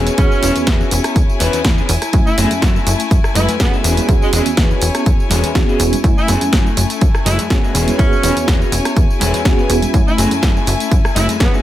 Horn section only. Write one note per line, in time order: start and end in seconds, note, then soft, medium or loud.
0.18 0.56 C#4 medium
2.27 2.38 E4 medium
3.36 3.48 E4 medium
3.60 3.73 B3 loud
4.22 4.29 G#3 medium
4.34 4.42 G#3 medium
6.17 6.28 E4 medium
7.26 7.39 E4 medium
7.99 8.36 C#4 loud
10.07 10.18 E4 medium
11.15 11.28 E4 medium
11.40 11.53 B3 loud